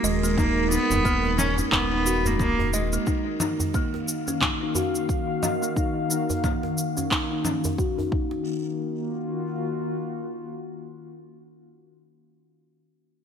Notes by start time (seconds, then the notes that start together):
Already playing: G#3 D#4 A#4
0.03 D#1 G#3 D#5, djembe slap, shaker
0.23 A#3, shaker
0.38 A#3 D#4, kick, low conga, shaker
0.71 B3 D#4, shaker
0.90 D#1, djembe slap, djembe tone, djembe bass, shaker
1.05 A#3, kick, shaker
1.24 djembe slap, djembe tone
1.38 C#4, low conga, shaker
1.58 C#4, djembe slap, djembe tone, shaker
1.72 D#1 B3 D#4, kick, clap, shaker
1.92 D#4
2.06 F#4, shaker
2.25 A#3, djembe slap, djembe bass, shaker
2.39 A#3, kick, low conga, shaker
2.59 djembe bass
2.73 G#3 D#5, shaker
2.93 A#3, djembe slap, shaker
3.07 D#3 D#4, kick, shaker
3.36 A#3, low conga
3.41 D#4, shaker
3.60 djembe slap, djembe tone, djembe bass, shaker
3.66 F5
3.71 F#4, kick, shaker
3.75 A#3
3.94 djembe slap, djembe tone
4.08 shaker
4.28 C#4, djembe slap, djembe tone, shaker
4.42 D#4, kick, clap, low conga, shaker
4.61 D#4
4.75 F#4, djembe bass, shaker
4.95 shaker
5.09 kick, shaker
5.43 D#5, djembe slap, low conga, shaker
5.62 A#3, shaker
5.76 D#4, kick, shaker
6.10 D#4, shaker
6.30 djembe slap, djembe tone, djembe bass, shaker
6.44 A#3, kick, low conga, shaker
6.63 djembe slap, djembe tone
6.78 shaker
6.97 C#4, djembe slap, djembe tone, shaker
7.11 D#4, kick, clap, shaker
7.31 D#4
7.45 C#4, low conga, shaker
7.64 djembe slap, djembe bass, shaker
7.78 F#4, kick, shaker
7.98 D#4, djembe bass
8.12 D#3 D#4, kick
8.24 A#3
8.31 djembe slap
8.69 F4
8.77 F#4